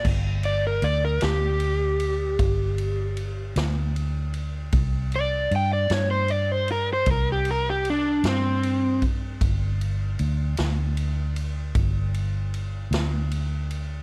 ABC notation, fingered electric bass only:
X:1
M:12/8
L:1/8
Q:3/8=51
K:C
V:1 name="Fingered electric bass" clef=bass
G,,,2 D,, D,,3 G,,,3 D,,3 | C,,2 G,, G,,3 C,,3 G,,3 | G,,,2 D,, D,,3 G,,,3 D,,3 |]